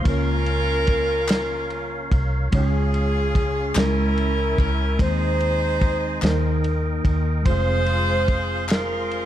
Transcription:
0.00 2.47 A#3 medium
0.00 2.49 A#4 medium
0.00 2.48 F5 medium
0.04 2.07 C#2 loud
0.04 1.25 C#3 medium
0.04 2.48 C#4 medium
0.04 2.09 C#4 medium
0.04 2.49 F4 medium
0.04 2.12 A#4 loud
0.04 4.95 C#5 medium
0.04 kick loud
0.04 ride medium
0.09 2.09 F4 medium
0.09 2.51 C#5 medium
0.46 ride soft
0.87 kick medium
0.87 ride soft
1.28 snare loud
1.28 clap medium
1.28 ride medium
1.70 ride soft
2.11 2.49 C2 medium
2.11 kick medium
2.11 ride soft
2.51 3.72 C#2 loud
2.51 3.72 C#3 medium
2.51 3.73 G#3 medium
2.51 3.75 C#4 medium
2.51 2.59 D#4 soft
2.51 3.73 F4 medium
2.51 3.74 G#4 medium
2.51 3.73 G#4 medium
2.51 3.77 C#5 medium
2.51 3.74 F5 medium
2.51 kick loud
2.51 ride medium
2.56 3.73 C#4 medium
2.60 3.80 F4 medium
2.94 ride soft
3.35 kick medium
3.35 ride soft
3.75 4.54 C#2 medium
3.75 4.96 C#3 medium
3.75 4.97 G#3 medium
3.75 4.99 C#4 medium
3.75 5.00 E4 medium
3.75 4.96 E4 medium
3.75 4.98 A#4 medium
3.75 4.58 A#4 medium
3.75 4.98 E5 medium
3.75 6.20 G#5 medium
3.75 snare loud
3.75 clap medium
3.75 ride medium
3.79 5.01 A#4 medium
4.17 ride soft
4.58 4.96 C#2 medium
4.58 4.97 A#4 loud
4.58 kick medium
4.58 ride soft
4.98 6.19 D#2 loud
4.98 6.19 D#3 medium
4.98 6.22 G#3 medium
4.98 6.23 C4 medium
4.98 6.22 D#4 medium
4.98 6.61 D#4 medium
4.98 6.61 G#4 medium
4.98 6.22 C5 medium
4.98 6.24 C5 medium
4.98 7.44 D#5 medium
4.98 kick loud
4.98 ride medium
5.02 6.65 C5 loud
5.40 ride soft
5.81 kick medium
5.81 ride soft
6.21 7.01 D#2 medium
6.21 7.42 D#3 medium
6.21 7.46 A#3 medium
6.21 7.46 D#4 medium
6.21 7.47 A#4 medium
6.21 7.46 A#4 medium
6.21 7.46 G5 medium
6.21 snare loud
6.21 clap medium
6.21 ride medium
6.64 ride soft
7.05 7.43 D#2 medium
7.05 kick medium
7.05 ride soft
7.42 9.25 F1 loud
7.42 9.25 G#3 medium
7.42 9.25 C4 medium
7.42 9.25 G#4 medium
7.42 9.25 C5 medium
7.42 9.25 F5 medium
7.42 9.25 C6 medium
7.42 kick loud
7.42 ride medium
7.47 8.66 F4 medium
7.47 9.25 F4 medium
7.47 8.66 G#4 medium
7.47 8.66 C5 loud
7.47 9.25 C5 medium
7.86 ride soft
8.28 kick medium
8.28 ride soft
8.69 9.25 F4 medium
8.69 9.25 A#4 medium
8.69 snare loud
8.69 clap medium
8.69 ride medium
9.11 ride soft

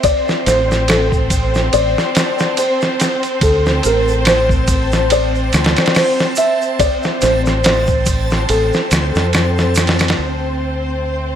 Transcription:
0.00 10.18 C4 medium
0.00 10.20 C4 medium
0.00 10.17 C5 medium
0.00 10.20 A5 medium
0.00 kick medium
0.00 ride medium
0.00 shaker soft
0.04 0.43 D5 loud
0.28 snare soft
0.28 shaker soft
0.46 1.70 A1 medium
0.46 0.90 C5 loud
0.46 snare soft
0.46 ride medium
0.46 shaker medium
0.71 snare soft
0.71 shaker soft
0.88 1.69 A4 medium
0.88 snare loud
0.88 ride medium
0.88 shaker soft
1.12 kick medium
1.12 shaker soft
1.30 kick medium
1.30 ride medium
1.30 shaker medium
1.54 snare soft
1.54 shaker soft
1.73 1.94 A1 medium
1.73 2.60 D5 loud
1.73 ride medium
1.73 shaker medium
1.98 snare soft
1.98 shaker soft
2.15 snare loud
2.15 ride medium
2.15 shaker medium
2.39 snare medium
2.39 shaker soft
2.57 3.20 C5 loud
2.57 ride medium
2.57 shaker medium
2.81 snare soft
2.81 shaker soft
3.00 snare medium
3.00 ride medium
3.00 shaker medium
3.23 ride soft
3.23 shaker soft
3.41 3.80 D2 loud
3.41 3.86 A4 medium
3.41 kick loud
3.41 ride medium
3.41 shaker soft
3.66 snare soft
3.66 shaker soft
3.83 5.50 A1 medium
3.83 4.29 A#4 medium
3.83 ride medium
3.83 shaker medium
4.08 shaker soft
4.25 5.14 C5 medium
4.25 snare loud
4.25 ride medium
4.25 shaker soft
4.49 kick loud
4.49 shaker soft
4.67 kick loud
4.67 ride medium
4.67 shaker medium
4.92 snare soft
4.92 shaker soft
5.10 5.99 D5 loud
5.10 ride medium
5.10 shaker soft
5.35 shaker soft
5.53 5.74 D2 medium
5.53 snare medium
5.53 ride medium
5.53 shaker medium
5.64 snare medium
5.64 ride medium
5.76 snare medium
5.76 ride medium
5.76 shaker soft
5.86 snare medium
5.86 ride medium
5.95 6.40 C5 medium
5.95 snare loud
5.95 open hi-hat medium
5.95 shaker soft
6.19 snare medium
6.19 shaker soft
6.36 6.81 E5 medium
6.36 ride medium
6.36 shaker medium
6.62 shaker soft
6.79 7.19 D5 loud
6.79 kick loud
6.79 ride medium
6.79 shaker medium
7.03 snare soft
7.03 shaker soft
7.21 8.46 A1 medium
7.21 7.62 C5 medium
7.21 snare soft
7.21 ride medium
7.21 shaker medium
7.46 snare soft
7.46 shaker soft
7.64 8.45 C5 medium
7.64 snare loud
7.64 ride medium
7.64 shaker soft
7.87 kick medium
7.87 shaker soft
8.06 kick medium
8.06 ride medium
8.06 shaker medium
8.30 snare soft
8.30 shaker soft
8.49 8.70 A1 medium
8.49 9.72 A4 medium
8.49 ride medium
8.49 shaker soft
8.73 snare soft
8.73 shaker soft
8.91 9.12 D2 medium
8.91 snare loud
8.91 ride medium
8.91 shaker medium
9.15 10.15 F2 medium
9.15 snare medium
9.15 shaker soft
9.33 snare loud
9.33 ride medium
9.33 shaker medium
9.58 snare soft
9.58 shaker soft
9.75 snare medium
9.75 ride medium
9.75 shaker medium
9.87 snare medium
9.87 ride medium
9.99 snare medium
9.99 ride medium
9.99 shaker soft
10.08 snare loud
10.08 ride medium
10.19 11.36 D2 medium
10.19 11.36 A3 medium
10.19 11.36 C4 medium
10.19 11.36 A4 medium
10.19 11.36 C5 medium

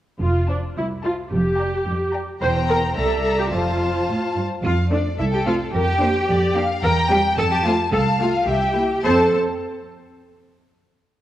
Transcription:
0.22 0.65 F1 soft
0.22 0.65 F2 soft
0.22 0.48 F4 soft
0.49 0.58 D4 soft
0.49 0.70 C5 soft
0.49 0.70 A5 soft
0.77 1.21 C2 soft
0.77 0.85 E4 soft
1.04 1.12 F4 medium
1.04 1.25 C5 soft
1.04 1.25 A5 soft
1.31 1.75 F1 soft
1.31 1.75 F2 medium
1.31 2.12 G4 medium
1.59 1.80 D5 soft
1.59 1.79 G5 soft
1.59 1.79 A#5 soft
1.86 2.30 F2 medium
2.14 2.34 D5 soft
2.14 2.34 G5 soft
2.14 2.34 A#5 soft
2.41 2.92 E1 medium
2.41 2.93 E2 medium
2.41 2.50 C5 medium
2.41 2.93 C5 soft
2.41 2.93 G5 medium
2.41 2.93 A#5 medium
2.69 2.77 A#4 medium
2.96 3.48 C2 soft
2.96 3.51 C2 medium
2.96 3.37 A4 medium
2.96 3.51 D5 soft
2.96 3.53 E5 medium
2.96 3.51 A#5 medium
3.39 3.44 G4 medium
3.51 4.04 F1 soft
3.51 4.03 F2 soft
3.51 4.34 F4 soft
3.51 4.44 C5 soft
3.51 4.42 F5 soft
3.51 4.42 A5 soft
4.08 4.16 A2 soft
4.36 4.44 G2 soft
4.63 5.07 F2 medium
4.63 4.72 F4 medium
4.63 4.90 F5 medium
4.91 5.12 A3 soft
4.91 5.12 C4 medium
4.91 4.99 D4 medium
4.91 5.19 D5 medium
5.19 5.62 C2 medium
5.19 5.25 E4 medium
5.19 5.70 A4 medium
5.19 5.25 E5 medium
5.32 5.39 G4 medium
5.32 5.46 G5 medium
5.47 5.67 A3 medium
5.47 5.67 C4 medium
5.47 5.55 F4 medium
5.47 5.55 F5 medium
5.73 6.17 F2 medium
5.73 6.54 G4 medium
5.73 5.82 A#4 medium
5.73 6.54 G5 medium
6.01 6.22 A#3 medium
6.01 6.22 D4 medium
6.01 6.09 C5 medium
6.29 6.72 F2 medium
6.29 6.56 D5 medium
6.56 6.77 A#3 medium
6.56 6.77 D4 medium
6.56 6.84 F5 medium
6.83 7.27 E2 medium
6.83 6.92 A#4 medium
6.83 7.38 G5 medium
6.83 7.09 A#5 medium
7.11 7.32 G3 medium
7.11 7.31 C4 medium
7.11 7.19 G4 medium
7.11 7.38 G5 medium
7.38 7.81 F2 medium
7.38 7.44 A4 medium
7.38 7.92 A5 medium
7.38 7.44 A5 medium
7.52 7.66 G4 medium
7.52 7.58 G5 medium
7.65 7.87 A3 medium
7.65 7.87 C4 medium
7.65 7.73 F4 medium
7.65 7.74 F5 medium
7.93 8.37 C2 medium
7.93 8.01 A4 medium
7.93 8.47 F5 medium
7.93 8.20 A5 medium
8.20 8.41 A3 medium
8.20 8.48 F4 medium
8.20 8.42 F4 medium
8.20 8.49 F5 medium
8.48 8.93 C2 medium
8.48 9.03 G4 medium
8.48 8.77 E5 medium
8.48 9.04 G5 medium
8.77 8.98 A#3 soft
8.77 8.97 E4 soft
9.04 9.35 F2 medium
9.04 9.35 C4 medium
9.04 9.35 A4 medium
9.04 9.35 C5 medium
9.04 9.35 A5 medium

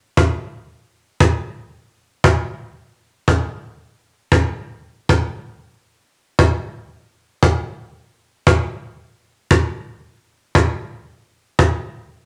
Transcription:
0.17 cajon bass loud
1.20 cajon bass medium
2.24 cajon bass loud
3.28 cajon bass medium
4.32 cajon bass loud
5.09 cajon bass medium
6.39 cajon bass loud
7.43 cajon bass medium
8.47 cajon bass loud
9.51 cajon bass medium
10.55 cajon bass loud
11.59 cajon bass medium

